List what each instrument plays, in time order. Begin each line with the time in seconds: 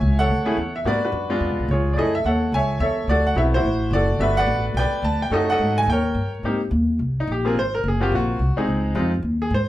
Already playing: upright piano C#5 E5 G#5
0.01 upright bass C#2
0.19 upright piano A4 C#5 F#5
0.29 upright bass D2
0.45 upright piano A3 C#4 E4 G#4
0.57 upright bass E2
0.76 upright piano E5
0.85 upright bass G#2, upright piano A#3 B3 D4 F#4 B4 D5
1.05 upright piano D4 F#4 B4
1.12 upright bass F#2
1.30 upright piano G#3 B3 D4 F4
1.40 upright bass F2
1.50 upright bass C#2
1.59 upright bass B1
1.68 upright bass C#2, upright piano F4 C#5
1.73 upright piano G#4
1.93 upright bass F#2, upright piano A3 C#4 D5
1.97 upright piano E4 G#4 A4 D#5
2.15 upright piano E5
2.24 upright bass D#2, upright piano A4 C#5 F#5
2.52 upright bass C#2, upright piano C#5 E5 G#5
2.80 upright bass E2, upright piano A4 C#5 E5
3.07 upright bass D2, upright piano F#4 A4 D5
3.27 upright piano F#5
3.35 upright bass B1, upright piano B3 C4 E4 F#4 E5
3.54 upright piano E4 F#4 C5
3.63 upright bass A1
3.91 upright bass F#1, upright piano D5
3.95 upright piano F#4 A4
4.19 upright bass G1, upright piano A3 B3 D4 F#4 B4 E5
4.37 upright piano B4 D5 F#5
4.46 upright bass A1
4.74 upright bass B1, upright piano G5
4.79 upright piano B4 D5
4.91 muted upright bass stroke
5.02 upright bass D2, upright piano A5
5.22 upright piano G5
5.30 upright bass F#2, upright piano A3 C#4 D#4 A4 D#5
5.35 upright piano F#4 A4
5.50 upright piano A4 D#5 F#5
5.58 upright bass G#2
5.78 upright piano G#5
5.86 upright bass D#2, upright piano G5
5.92 upright piano A#4 C#5
6.15 upright bass G2
6.43 upright bass G#2, upright piano A#3 C4 D#4 G4
6.71 upright bass D#2
6.99 upright bass C2
7.20 upright piano D#4
7.27 upright bass A#1
7.32 upright piano G4
7.45 upright piano A#3 C4 F4 G#4 A#4
7.55 upright bass G#1, upright piano C5
7.75 upright piano A#4
7.84 upright bass F#1
7.88 upright piano G#4
8.00 upright piano A#3 C4 F4 F#4 G4
8.12 upright bass A#1, upright piano F#4
8.39 upright bass C2
8.56 upright piano G#3 C4 D#4 G#4, muted upright bass stroke
8.67 upright bass C#2
8.95 upright bass F2, upright piano G#3 C4 D#4 F4
9.22 upright bass D#2
9.42 upright piano G#4
9.50 upright bass G#2
9.54 upright piano C5